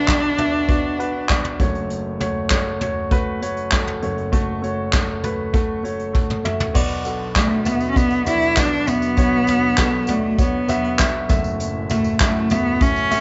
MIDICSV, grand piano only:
0, 0, Header, 1, 2, 480
1, 0, Start_track
1, 0, Key_signature, 2, "minor"
1, 0, Tempo, 606061
1, 1506, Time_signature, 4, 2, 24, 8
1, 10458, End_track
2, 0, Start_track
2, 0, Title_t, "Grand piano"
2, 0, Program_c, 0, 0
2, 0, Control_c, 0, 64, 127
2, 0, Note_on_c, 0, 35, 55
2, 0, Note_on_c, 0, 47, 57
2, 0, Note_on_c, 0, 59, 63
2, 0, Note_on_c, 0, 66, 56
2, 0, Note_on_c, 0, 69, 68
2, 0, Note_on_c, 0, 71, 93
2, 0, Note_on_c, 0, 73, 65
2, 0, Note_on_c, 0, 76, 70
2, 57, Note_off_c, 0, 59, 0
2, 57, Note_on_c, 0, 59, 61
2, 63, Note_off_c, 0, 66, 0
2, 63, Note_on_c, 0, 66, 58
2, 67, Note_on_c, 0, 74, 69
2, 265, Note_off_c, 0, 59, 0
2, 268, Note_off_c, 0, 66, 0
2, 270, Note_off_c, 0, 74, 0
2, 300, Note_on_c, 0, 59, 71
2, 304, Note_on_c, 0, 66, 70
2, 310, Note_off_c, 0, 76, 0
2, 310, Note_on_c, 0, 76, 84
2, 507, Note_off_c, 0, 59, 0
2, 509, Note_off_c, 0, 66, 0
2, 511, Note_off_c, 0, 76, 0
2, 540, Note_on_c, 0, 59, 91
2, 545, Note_on_c, 0, 66, 83
2, 549, Note_on_c, 0, 74, 99
2, 747, Note_off_c, 0, 59, 0
2, 749, Note_off_c, 0, 66, 0
2, 751, Note_off_c, 0, 74, 0
2, 779, Note_on_c, 0, 59, 78
2, 784, Note_on_c, 0, 66, 68
2, 790, Note_off_c, 0, 71, 0
2, 790, Note_on_c, 0, 71, 88
2, 986, Note_off_c, 0, 59, 0
2, 989, Note_off_c, 0, 66, 0
2, 991, Note_off_c, 0, 71, 0
2, 1023, Note_on_c, 0, 59, 80
2, 1028, Note_on_c, 0, 66, 69
2, 1033, Note_on_c, 0, 74, 88
2, 1228, Note_off_c, 0, 59, 0
2, 1230, Note_off_c, 0, 66, 0
2, 1233, Note_off_c, 0, 74, 0
2, 1234, Note_off_c, 0, 47, 0
2, 1235, Note_off_c, 0, 35, 0
2, 1262, Note_on_c, 0, 57, 78
2, 1267, Note_on_c, 0, 30, 63
2, 1267, Note_on_c, 0, 66, 71
2, 1268, Note_on_c, 0, 42, 67
2, 1272, Note_off_c, 0, 73, 0
2, 1272, Note_on_c, 0, 73, 86
2, 1276, Control_c, 0, 64, 0
2, 1281, Note_off_c, 0, 69, 0
2, 1395, Control_c, 0, 64, 127
2, 1672, Note_off_c, 0, 57, 0
2, 1674, Note_off_c, 0, 66, 0
2, 1677, Note_off_c, 0, 73, 0
2, 1742, Note_on_c, 0, 57, 77
2, 1746, Note_on_c, 0, 66, 67
2, 1750, Note_on_c, 0, 73, 86
2, 1948, Note_off_c, 0, 57, 0
2, 1950, Note_off_c, 0, 66, 0
2, 1952, Note_off_c, 0, 73, 0
2, 1981, Note_on_c, 0, 57, 81
2, 1986, Note_on_c, 0, 66, 71
2, 1990, Note_on_c, 0, 73, 87
2, 2187, Note_off_c, 0, 57, 0
2, 2190, Note_off_c, 0, 66, 0
2, 2192, Note_off_c, 0, 73, 0
2, 2221, Note_on_c, 0, 57, 73
2, 2227, Note_on_c, 0, 66, 69
2, 2231, Note_on_c, 0, 73, 84
2, 2428, Note_off_c, 0, 57, 0
2, 2430, Note_off_c, 0, 66, 0
2, 2432, Note_off_c, 0, 73, 0
2, 2462, Note_on_c, 0, 57, 92
2, 2467, Note_on_c, 0, 66, 89
2, 2471, Note_on_c, 0, 71, 104
2, 2668, Note_off_c, 0, 57, 0
2, 2670, Note_off_c, 0, 66, 0
2, 2673, Note_off_c, 0, 71, 0
2, 2702, Note_on_c, 0, 57, 79
2, 2708, Note_on_c, 0, 66, 73
2, 2711, Note_on_c, 0, 73, 90
2, 2908, Note_off_c, 0, 57, 0
2, 2911, Note_off_c, 0, 66, 0
2, 2913, Note_off_c, 0, 73, 0
2, 2943, Note_on_c, 0, 57, 82
2, 2946, Note_on_c, 0, 66, 72
2, 2952, Note_on_c, 0, 69, 87
2, 3149, Note_off_c, 0, 57, 0
2, 3150, Note_off_c, 0, 66, 0
2, 3153, Note_off_c, 0, 69, 0
2, 3155, Note_off_c, 0, 30, 0
2, 3156, Note_off_c, 0, 42, 0
2, 3186, Note_on_c, 0, 57, 74
2, 3190, Note_on_c, 0, 42, 68
2, 3190, Note_on_c, 0, 66, 67
2, 3191, Note_on_c, 0, 30, 61
2, 3194, Note_on_c, 0, 73, 85
2, 3390, Note_off_c, 0, 57, 0
2, 3392, Note_off_c, 0, 66, 0
2, 3394, Note_off_c, 0, 73, 0
2, 3421, Note_on_c, 0, 57, 100
2, 3424, Note_on_c, 0, 66, 88
2, 3429, Note_on_c, 0, 69, 104
2, 3628, Note_off_c, 0, 57, 0
2, 3629, Note_off_c, 0, 66, 0
2, 3632, Note_off_c, 0, 69, 0
2, 3660, Note_on_c, 0, 57, 77
2, 3665, Note_on_c, 0, 66, 72
2, 3670, Note_on_c, 0, 73, 84
2, 3867, Note_off_c, 0, 57, 0
2, 3870, Note_off_c, 0, 66, 0
2, 3872, Note_off_c, 0, 73, 0
2, 3902, Note_on_c, 0, 57, 79
2, 3905, Note_on_c, 0, 66, 74
2, 3912, Note_on_c, 0, 69, 90
2, 4109, Note_off_c, 0, 57, 0
2, 4110, Note_off_c, 0, 66, 0
2, 4113, Note_off_c, 0, 69, 0
2, 4144, Note_on_c, 0, 57, 74
2, 4146, Note_on_c, 0, 66, 66
2, 4153, Note_on_c, 0, 71, 84
2, 4349, Note_off_c, 0, 57, 0
2, 4351, Note_off_c, 0, 66, 0
2, 4354, Note_off_c, 0, 71, 0
2, 4382, Note_on_c, 0, 57, 97
2, 4388, Note_on_c, 0, 66, 82
2, 4390, Note_on_c, 0, 69, 102
2, 4589, Note_off_c, 0, 57, 0
2, 4591, Note_off_c, 0, 66, 0
2, 4593, Note_off_c, 0, 69, 0
2, 4619, Note_on_c, 0, 57, 77
2, 4622, Note_on_c, 0, 66, 71
2, 4627, Note_on_c, 0, 73, 84
2, 4827, Note_off_c, 0, 57, 0
2, 4829, Note_off_c, 0, 66, 0
2, 4831, Note_off_c, 0, 73, 0
2, 4857, Note_on_c, 0, 57, 75
2, 4861, Note_on_c, 0, 66, 66
2, 4866, Note_on_c, 0, 69, 84
2, 5066, Note_off_c, 0, 57, 0
2, 5068, Note_off_c, 0, 66, 0
2, 5070, Note_off_c, 0, 69, 0
2, 5077, Note_off_c, 0, 42, 0
2, 5078, Note_off_c, 0, 30, 0
2, 5100, Note_on_c, 0, 57, 68
2, 5104, Note_on_c, 0, 66, 66
2, 5107, Note_on_c, 0, 76, 76
2, 5307, Note_off_c, 0, 57, 0
2, 5309, Note_off_c, 0, 66, 0
2, 5311, Note_off_c, 0, 76, 0
2, 5339, Note_on_c, 0, 59, 102
2, 5342, Note_on_c, 0, 35, 69
2, 5342, Note_on_c, 0, 66, 94
2, 5343, Note_on_c, 0, 47, 69
2, 5348, Note_on_c, 0, 74, 113
2, 5357, Control_c, 0, 64, 0
2, 5509, Control_c, 0, 64, 127
2, 5547, Note_off_c, 0, 59, 0
2, 5548, Note_off_c, 0, 66, 0
2, 5551, Note_off_c, 0, 74, 0
2, 5581, Note_on_c, 0, 59, 78
2, 5587, Note_on_c, 0, 66, 71
2, 5591, Note_on_c, 0, 69, 84
2, 5788, Note_off_c, 0, 59, 0
2, 5791, Note_off_c, 0, 66, 0
2, 5793, Note_off_c, 0, 69, 0
2, 5816, Note_on_c, 0, 59, 66
2, 5823, Note_on_c, 0, 66, 64
2, 5828, Note_on_c, 0, 74, 73
2, 6026, Note_off_c, 0, 59, 0
2, 6029, Note_off_c, 0, 66, 0
2, 6031, Note_off_c, 0, 74, 0
2, 6057, Note_on_c, 0, 59, 62
2, 6061, Note_on_c, 0, 66, 60
2, 6065, Note_on_c, 0, 76, 69
2, 6266, Note_off_c, 0, 59, 0
2, 6268, Note_off_c, 0, 66, 0
2, 6270, Note_off_c, 0, 76, 0
2, 6297, Note_on_c, 0, 59, 60
2, 6301, Note_on_c, 0, 66, 57
2, 6306, Note_on_c, 0, 74, 67
2, 6506, Note_off_c, 0, 59, 0
2, 6508, Note_off_c, 0, 66, 0
2, 6511, Note_off_c, 0, 74, 0
2, 6539, Note_on_c, 0, 59, 84
2, 6544, Note_on_c, 0, 66, 80
2, 6548, Note_on_c, 0, 74, 93
2, 6747, Note_off_c, 0, 59, 0
2, 6749, Note_off_c, 0, 66, 0
2, 6752, Note_off_c, 0, 74, 0
2, 6776, Note_on_c, 0, 59, 90
2, 6781, Note_on_c, 0, 66, 77
2, 6784, Note_on_c, 0, 74, 97
2, 6986, Note_off_c, 0, 59, 0
2, 6988, Note_off_c, 0, 66, 0
2, 6989, Note_off_c, 0, 74, 0
2, 7019, Note_on_c, 0, 59, 65
2, 7023, Note_on_c, 0, 66, 54
2, 7028, Note_on_c, 0, 76, 67
2, 7227, Note_off_c, 0, 59, 0
2, 7229, Note_off_c, 0, 66, 0
2, 7232, Note_off_c, 0, 76, 0
2, 7233, Note_off_c, 0, 35, 0
2, 7233, Note_off_c, 0, 47, 0
2, 7261, Note_on_c, 0, 59, 89
2, 7266, Note_on_c, 0, 35, 61
2, 7266, Note_on_c, 0, 47, 60
2, 7266, Note_on_c, 0, 66, 81
2, 7270, Note_on_c, 0, 73, 96
2, 7468, Note_off_c, 0, 59, 0
2, 7471, Note_off_c, 0, 66, 0
2, 7473, Note_off_c, 0, 73, 0
2, 7498, Note_on_c, 0, 59, 70
2, 7504, Note_on_c, 0, 66, 57
2, 7508, Note_on_c, 0, 73, 74
2, 7707, Note_off_c, 0, 59, 0
2, 7710, Note_off_c, 0, 66, 0
2, 7712, Note_off_c, 0, 73, 0
2, 7742, Note_on_c, 0, 59, 80
2, 7745, Note_on_c, 0, 66, 77
2, 7749, Note_on_c, 0, 69, 89
2, 7948, Note_off_c, 0, 59, 0
2, 7950, Note_off_c, 0, 66, 0
2, 7952, Note_off_c, 0, 69, 0
2, 7979, Note_on_c, 0, 59, 65
2, 7985, Note_on_c, 0, 66, 62
2, 7989, Note_on_c, 0, 74, 72
2, 8187, Note_off_c, 0, 59, 0
2, 8190, Note_off_c, 0, 66, 0
2, 8192, Note_off_c, 0, 74, 0
2, 8220, Note_on_c, 0, 59, 63
2, 8224, Note_on_c, 0, 66, 62
2, 8227, Note_on_c, 0, 73, 75
2, 8427, Note_off_c, 0, 59, 0
2, 8429, Note_off_c, 0, 66, 0
2, 8431, Note_off_c, 0, 73, 0
2, 8459, Note_on_c, 0, 59, 86
2, 8465, Note_on_c, 0, 66, 82
2, 8469, Note_on_c, 0, 76, 101
2, 8667, Note_off_c, 0, 59, 0
2, 8670, Note_off_c, 0, 66, 0
2, 8672, Note_off_c, 0, 76, 0
2, 8698, Note_on_c, 0, 59, 91
2, 8703, Note_on_c, 0, 66, 83
2, 8708, Note_on_c, 0, 76, 96
2, 8906, Note_off_c, 0, 59, 0
2, 8909, Note_off_c, 0, 66, 0
2, 8911, Note_off_c, 0, 76, 0
2, 8914, Note_off_c, 0, 47, 0
2, 8915, Note_off_c, 0, 35, 0
2, 8939, Note_on_c, 0, 57, 81
2, 8944, Note_on_c, 0, 42, 66
2, 8945, Note_on_c, 0, 30, 71
2, 8945, Note_on_c, 0, 66, 73
2, 8949, Note_on_c, 0, 76, 92
2, 8958, Control_c, 0, 64, 0
2, 9071, Control_c, 0, 64, 127
2, 9350, Note_off_c, 0, 57, 0
2, 9353, Note_off_c, 0, 66, 0
2, 9355, Note_off_c, 0, 76, 0
2, 9419, Note_on_c, 0, 57, 64
2, 9425, Note_on_c, 0, 66, 64
2, 9429, Note_on_c, 0, 76, 75
2, 9626, Note_off_c, 0, 57, 0
2, 9629, Note_off_c, 0, 66, 0
2, 9631, Note_off_c, 0, 76, 0
2, 9661, Note_on_c, 0, 57, 74
2, 9666, Note_on_c, 0, 66, 65
2, 9669, Note_on_c, 0, 76, 77
2, 9867, Note_off_c, 0, 57, 0
2, 9870, Note_off_c, 0, 66, 0
2, 9871, Note_off_c, 0, 76, 0
2, 9904, Note_on_c, 0, 57, 65
2, 9908, Note_on_c, 0, 66, 65
2, 9913, Note_on_c, 0, 76, 82
2, 10109, Note_off_c, 0, 57, 0
2, 10111, Note_off_c, 0, 66, 0
2, 10113, Note_off_c, 0, 76, 0
2, 10139, Note_on_c, 0, 57, 69
2, 10144, Note_on_c, 0, 66, 62
2, 10150, Note_on_c, 0, 76, 70
2, 10346, Note_off_c, 0, 57, 0
2, 10348, Note_off_c, 0, 66, 0
2, 10352, Note_off_c, 0, 76, 0
2, 10378, Note_on_c, 0, 57, 95
2, 10382, Note_on_c, 0, 66, 78
2, 10387, Note_on_c, 0, 76, 105
2, 10458, Note_off_c, 0, 30, 0
2, 10458, Note_off_c, 0, 42, 0
2, 10458, Note_off_c, 0, 57, 0
2, 10458, Note_off_c, 0, 66, 0
2, 10458, Note_off_c, 0, 76, 0
2, 10458, End_track
0, 0, End_of_file